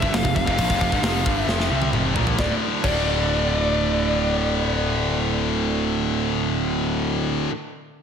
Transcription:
Already playing: lead electric guitar E5
0.01 picked electric bass G1, distorted electric guitar G2 D3, kick
0.12 picked electric bass F1, distorted electric guitar F2 C3, lead electric guitar F5, snare, open hi-hat
0.25 picked electric bass F1, distorted electric guitar F2 C3, kick
0.36 picked electric bass F1, distorted electric guitar F2 C3, lead electric guitar F5, kick
0.47 picked electric bass F1, distorted electric guitar F2 C3, kick
0.58 picked electric bass A#1, distorted electric guitar A#2 F3, kick, open hi-hat
0.70 picked electric bass F1, distorted electric guitar F2 C3, kick
0.81 picked electric bass F1, distorted electric guitar F2 C3, kick
0.92 picked electric bass G1, distorted electric guitar G2 D3, kick
1.01 picked electric bass F1, distorted electric guitar F2 C3 F3, snare, open hi-hat
1.26 picked electric bass G1, distorted electric guitar G2 D3 G3, kick
1.35 lead electric guitar E5
1.47 picked electric bass F1, distorted electric guitar F2 C3 F3, snare
1.60 snare
1.70 picked electric bass C2, distorted electric guitar C3 G3 C4
1.82 high tom
1.92 picked electric bass F1, distorted electric guitar F2 C3 F3, mid tom
2.15 picked electric bass A#1, distorted electric guitar A#2 F3 A#3, floor tom
2.27 floor tom
2.37 picked electric bass D1, distorted electric guitar D2 A2 D3, lead electric guitar D5, kick, snare
2.82 picked electric bass D1, distorted electric guitar D2 A2, lead electric guitar D5, kick, crash
2.86 distorted electric guitar D3

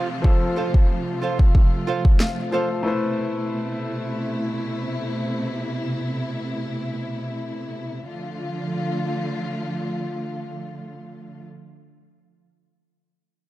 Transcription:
Already playing: string section C3 F3 A3 F4, grand piano F3 F4 A4 C5, downlifter
0.22 grand piano F3 F4 A4, kick
0.27 grand piano C5
0.56 nylon-string guitar F4 A4 C5 F5
0.74 kick
1.22 nylon-string guitar F4 A4 C5 F5
1.39 muted nylon-string guitar stroke, kick
1.55 kick
1.87 nylon-string guitar F4 A4 C5 F5
2.05 kick
2.20 grand piano F5, snare
2.51 grand piano F3 F4 A4 C5, nylon-string guitar F4 A4 C5 F5
2.83 string section B2 C3 E4, grand piano A3 E4 B4
2.88 grand piano C5
8.07 string section D3 F3 A3 F4

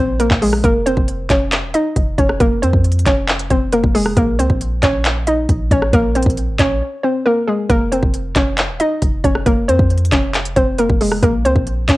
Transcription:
Already playing: 808-style bass A#1, synth pluck C5
0.00 synth pluck C4
0.20 synth pluck A#3 A#4, closed hi-hat
0.31 808-style bass A#1, kick, clap
0.42 synth pluck G#3 G#4, open hi-hat
0.53 cross-stick
0.64 808-style bass F1, synth pluck A#3 A#4, kick, closed hi-hat
0.86 synth pluck C4 C5, closed hi-hat
0.97 808-style bass F1, kick
1.08 closed hi-hat
1.30 808-style bass F1, synth pluck C#4 C#5, kick, clap, closed hi-hat
1.52 clap, closed hi-hat
1.63 808-style bass D#1
1.74 synth pluck D#4 D#5, closed hi-hat
1.96 808-style bass F1, kick, closed hi-hat
2.18 808-style bass F1, synth pluck C#4 C#5, kick, closed hi-hat
2.29 cross-stick
2.40 808-style bass F1, synth pluck A#3 A#4, kick, closed hi-hat
2.62 808-style bass F2, synth pluck C4 C5, closed hi-hat
2.73 808-style bass F2, kick
2.84 closed hi-hat
2.92 closed hi-hat
2.99 closed hi-hat
3.06 808-style bass F1, synth pluck C#4 C#5, kick, clap, closed hi-hat
3.28 clap, closed hi-hat
3.39 closed hi-hat
3.50 808-style bass F1, synth pluck C4 C5, kick, closed hi-hat
3.73 synth pluck A#3 A#4, closed hi-hat
3.84 808-style bass F1, kick
3.95 synth pluck G#3 G#4, open hi-hat
4.06 cross-stick
4.17 808-style bass A#1, synth pluck A#3 A#4, kick, closed hi-hat
4.39 808-style bass C#2, synth pluck C4 C5, closed hi-hat
4.50 808-style bass A#1, kick
4.61 closed hi-hat
4.83 808-style bass A#1, synth pluck C#4 C#5, kick, clap, closed hi-hat
5.05 clap, closed hi-hat
5.27 synth pluck D#4 D#5, closed hi-hat
5.49 808-style bass A#1, kick, closed hi-hat
5.71 808-style bass A#1, synth pluck C#4 C#5, kick, closed hi-hat
5.82 cross-stick
5.93 808-style bass A#1, synth pluck A#3 A#4, kick, closed hi-hat
6.15 synth pluck C4 C5, closed hi-hat
6.22 808-style bass A#1, kick, closed hi-hat
6.30 closed hi-hat
6.37 closed hi-hat
6.48 808-style bass G#1
6.59 808-style bass A#1, synth pluck C#4 C#5, kick, clap, closed hi-hat
7.03 synth pluck C4 C5
7.26 synth pluck A#3 A#4
7.48 synth pluck G#3 G#4
7.70 808-style bass F1, synth pluck A#3 A#4, kick, closed hi-hat
7.92 synth pluck C4 C5, closed hi-hat
8.03 808-style bass F1, kick
8.14 closed hi-hat
8.36 808-style bass F1, synth pluck C#4 C#5, kick, clap, closed hi-hat
8.58 clap, closed hi-hat
8.69 808-style bass D#1
8.80 synth pluck D#4 D#5, closed hi-hat
9.02 808-style bass F1, kick, closed hi-hat
9.24 808-style bass F1, synth pluck C#4 C#5, kick, closed hi-hat
9.35 cross-stick
9.46 808-style bass F1, synth pluck A#3 A#4, kick, closed hi-hat
9.68 808-style bass F2, synth pluck C4 C5, closed hi-hat
9.79 808-style bass F2, kick
9.90 closed hi-hat
9.98 closed hi-hat
10.05 closed hi-hat
10.12 808-style bass F1, synth pluck C#4 C#5, kick, clap, closed hi-hat
10.34 clap, closed hi-hat
10.45 closed hi-hat
10.56 808-style bass F1, synth pluck C4 C5, kick, closed hi-hat
10.78 synth pluck A#3 A#4, closed hi-hat
10.90 808-style bass F1, kick
11.01 synth pluck G#3 G#4, open hi-hat
11.12 cross-stick
11.23 808-style bass A#1, synth pluck A#3 A#4, kick, closed hi-hat
11.45 808-style bass C#2, synth pluck C4 C5, closed hi-hat
11.56 808-style bass A#1, kick
11.67 closed hi-hat
11.89 808-style bass A#1, synth pluck C#4 C#5, kick, clap, closed hi-hat

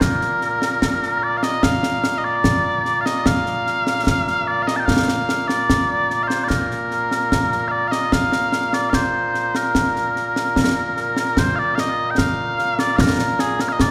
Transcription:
Already playing: bagpipes A#2 A#3
0.01 bagpipes A#4, concert bass drum, snare
0.21 snare
0.41 snare
0.62 snare
0.82 concert bass drum, snare
1.03 snare
1.23 bagpipes D5
1.37 bagpipes F5
1.43 bagpipes D#5, snare
1.63 bagpipes F5, concert bass drum, snare
1.83 snare
2.04 snare
2.18 bagpipes D#5
2.25 bagpipes D5
2.44 concert bass drum, snare
2.85 snare
3.01 bagpipes F5
3.06 bagpipes D#5, snare
3.26 bagpipes F5, concert bass drum, snare
3.46 snare
3.67 snare
3.87 snare
4.07 concert bass drum, snare
4.27 snare
4.48 bagpipes D5
4.63 bagpipes F5
4.67 bagpipes D#5, snare
4.76 bagpipes G5 A5
4.86 bagpipes F5, concert bass drum, snare
5.08 snare
5.29 snare
5.48 bagpipes D5, snare
5.70 concert bass drum, snare
6.10 snare
6.23 bagpipes F5
6.28 bagpipes C5, snare
6.44 bagpipes D5
6.48 bagpipes A#4, concert bass drum, snare
6.71 snare
6.91 snare
7.11 snare
7.32 concert bass drum, snare
7.52 snare
7.68 bagpipes D5 F5
7.88 bagpipes D#5 F5
7.92 snare
8.12 bagpipes F5, concert bass drum, snare
8.32 snare
8.52 snare
8.73 bagpipes D5, snare
8.90 bagpipes F5, concert bass drum, snare
8.94 bagpipes C5
9.34 snare
9.55 bagpipes A#4, snare
9.75 concert bass drum, snare
9.96 snare
10.16 snare
10.36 snare
10.56 concert bass drum, snare
10.97 snare
11.17 snare
11.37 bagpipes C5, concert bass drum, snare
11.56 bagpipes D5 F5
11.75 bagpipes F5, snare
11.80 bagpipes D#5
12.11 bagpipes G5
12.18 bagpipes F5, concert bass drum, snare
12.59 snare
12.79 bagpipes D5, snare
12.97 bagpipes A#4 F5, concert bass drum, snare
13.19 snare
13.39 bagpipes G#4, snare
13.60 bagpipes A#4, snare
13.69 bagpipes D#5 F5
13.80 bagpipes D5, concert bass drum, snare

